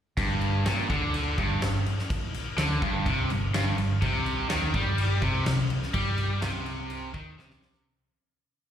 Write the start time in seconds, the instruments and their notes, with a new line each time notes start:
0.17 fingered electric bass G1, overdriven electric guitar G2, kick, crash
0.41 crash
0.65 fingered electric bass A#1, overdriven electric guitar A#2, snare, crash
0.90 fingered electric bass D2, overdriven electric guitar D3, kick, crash
1.14 crash
1.38 fingered electric bass G1, overdriven electric guitar G2, kick, crash
1.61 fingered electric bass G1, overdriven electric guitar G2, snare, crash
1.86 crash
1.99 snare
2.10 kick, crash
2.34 crash
2.58 fingered electric bass D2, overdriven electric guitar D3, snare, crash
2.82 fingered electric bass G1, overdriven electric guitar G2, kick, crash
3.06 fingered electric bass C2, overdriven electric guitar C3, kick, crash
3.30 fingered electric bass G1, overdriven electric guitar G2, crash
3.54 fingered electric bass G1, overdriven electric guitar G2, snare, crash
3.78 fingered electric bass G1, overdriven electric guitar G2, crash
4.02 fingered electric bass C2, overdriven electric guitar C3, kick, crash
4.26 crash
4.50 fingered electric bass D#2, overdriven electric guitar D#3, snare, crash
4.74 fingered electric bass G2, overdriven electric guitar G3, kick, crash
4.98 crash
5.22 fingered electric bass C2, overdriven electric guitar C3, kick, crash
5.46 fingered electric bass C2, overdriven electric guitar C3, snare, crash
5.70 crash
5.83 snare
5.94 fingered electric bass G2, overdriven electric guitar G3, kick, crash
6.18 crash
6.42 fingered electric bass C2, overdriven electric guitar C3, snare, crash
6.66 crash
6.90 crash
7.14 fingered electric bass D#2, overdriven electric guitar D#3, kick, crash
7.39 fingered electric bass C2, overdriven electric guitar C3, snare
7.51 snare
7.62 snare
7.74 snare